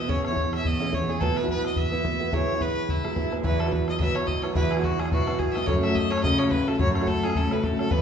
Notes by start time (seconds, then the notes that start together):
Already playing: E2 B2 D#5
0.08 C#4 E4 G#4 C#5, bodhran
0.25 C#5, bodhran
0.30 E4 G#4 C#5
0.36 bodhran
0.53 E5, bodhran
0.65 D#5, bodhran
0.80 C#4 E4 G#4 C#5
0.91 C#4 E4 G#4 C#5, bodhran
1.08 C#4 E4 G#4 C#5
1.20 B2 F#3 B3 E4 F#4 A4 B4, bodhran
1.36 B4, bodhran
1.42 B3 E4 F#4 B4
1.49 B4, bodhran
1.65 D#5, bodhran
1.76 E5, bodhran
1.91 B3 E4 F#4 B4
2.04 B3 E4 F#4 B4, bodhran
2.19 B3 E4 F#4 B4
2.32 E3 F#3 B3 E4 G#4 C#5, bodhran
2.55 B3 E4
2.61 B4, bodhran
2.89 E4, bodhran
3.03 F#3 B3 E4 G#4, bodhran
3.15 F#3 B3 E4 G#4, bodhran
3.31 F#3 B3 E4 G#4, bodhran
3.43 E2 E3 F#3 B3 E4 F#4 B4, bodhran
3.60 A4, bodhran
3.66 B3 E4 F#4, bodhran
3.72 B4, bodhran
3.88 F#3 B3 E4 F#4 D#5, bodhran
4.00 B2 E3 F#3 B3 E4 F#4 E5, bodhran
4.15 F#3 B3 E4 F#4 C#5, bodhran
4.27 D#5, bodhran
4.42 F#3 B3 E4 F#4 C#5, bodhran
4.55 E2 E3 F#3 B3 E4 F#4 B4, bodhran
4.71 G#4, bodhran
4.77 B3 E4 F#4, bodhran
4.83 F#4, bodhran
4.99 F#3 B3 E4 F#4 G#4, bodhran
5.05 bodhran
5.11 B2 E3 F#3 B3 E4 F#4, bodhran
5.27 F#3 B3 E4 F#4, bodhran
5.39 G#4, bodhran
5.52 F#3 D#5 E5, bodhran
5.56 B3 E4 F#4
5.66 F#2 F#3 A3 C#4 F#4 C#5, bodhran
5.83 E5, bodhran
5.89 A3 C#4 F#4, bodhran
5.95 D#5, bodhran
6.11 F#3 A3 C#4 F#4 C#5, bodhran
6.18 bodhran
6.23 C#3 F#3 A3 C#4 F#4 D#5, bodhran
6.39 F#3 A3 C#4 F#4 C#5, bodhran
6.51 B4, bodhran
6.67 F#3 A3 C#4 F#4 A4, bodhran
6.79 F#2 F#3 A3 C#4 F#4 C#5, bodhran
6.95 C#5, bodhran
7.01 A3 C#4 F#4, bodhran
7.07 A4, bodhran
7.23 F#3 A3 C#4 F#4 G#4, bodhran
7.30 bodhran
7.35 C#3 F#3 A3 C#4 F#4 A4, bodhran
7.51 F#3 A3 C#4 F#4 B4, bodhran
7.63 A4, bodhran
7.79 F#3 A3 C#4 F#4 A4, bodhran
7.90 E2 E3 F#3 B3 E4 F#4 B4, bodhran